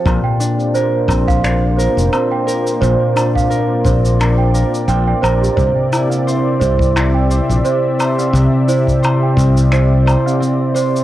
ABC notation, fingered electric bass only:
X:1
M:4/4
L:1/16
Q:"Swing 16ths" 1/4=87
K:Cmix
V:1 name="Fingered electric bass" clef=bass
B,,, z4 z B,,,4 z F,,, z4 | B,,, z4 z B,,,4 z2 B,,, z B,,, z | C,, z4 z C,,4 z B,,, z4 | C,, z4 z C,,4 z6 |]